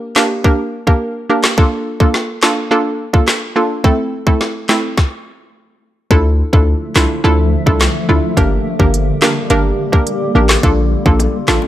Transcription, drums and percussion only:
0.16 snare, clap
0.44 kick
0.87 kick
1.44 snare, clap
1.58 kick
2.00 kick
2.14 snare
2.43 snare, clap
3.14 kick
3.28 snare, clap
3.84 kick
4.27 kick
4.41 snare
4.69 snare, clap
4.98 kick, snare
6.11 kick
6.53 kick
6.96 snare, clap
7.67 kick
7.81 snare, clap
8.37 kick, closed hi-hat
8.80 kick
8.94 closed hi-hat
9.22 snare, clap
9.50 closed hi-hat
9.93 kick
10.07 closed hi-hat
10.49 snare, clap
10.63 kick, closed hi-hat
11.06 kick
11.20 closed hi-hat, high bongo
11.48 snare, clap, low bongo
11.62 high bongo

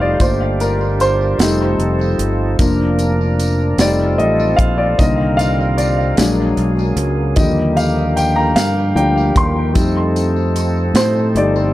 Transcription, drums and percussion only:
0.20 kick, closed hi-hat, tambourine
0.60 closed hi-hat, tambourine
1.00 closed hi-hat, tambourine
1.39 snare, closed hi-hat, tambourine
1.80 closed hi-hat
2.19 closed hi-hat
2.59 kick, closed hi-hat, tambourine
2.99 closed hi-hat, tambourine
3.40 closed hi-hat, tambourine
3.78 snare, closed hi-hat, tambourine
4.19 closed hi-hat
4.59 kick, closed hi-hat
4.99 kick, closed hi-hat, tambourine
5.39 closed hi-hat, tambourine
5.78 closed hi-hat, tambourine
6.17 snare, closed hi-hat, tambourine
6.57 closed hi-hat
6.97 closed hi-hat
7.36 kick, closed hi-hat, tambourine
7.77 closed hi-hat, tambourine
8.17 closed hi-hat, tambourine
8.56 snare, closed hi-hat, tambourine
8.97 closed hi-hat
9.36 kick, closed hi-hat
9.75 kick, closed hi-hat, tambourine
10.16 closed hi-hat, tambourine
10.56 closed hi-hat, tambourine
10.95 snare, closed hi-hat, tambourine
11.36 closed hi-hat

